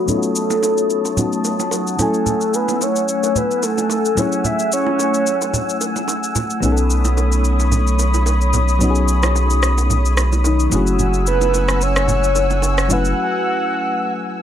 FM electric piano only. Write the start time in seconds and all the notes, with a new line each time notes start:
0.06 F#3 B3 C#4 D#4
0.11 F4
0.18 F#4
1.16 F#3 B3 C#4 D#4 F#4
1.97 F#3 A3 C#4 E4
2.02 G#5
4.15 F#3 A3 C#4 E4
4.20 G#4
6.61 F#3 B3 C#4 D#4
6.66 G#4
6.72 A4
8.79 F#3 B3 C#4 D#4
8.84 F#4
8.90 G#4
10.70 F#3 A3 C#4 E4
10.75 G#4
12.88 F#3 A3 C#4 E4
12.93 B4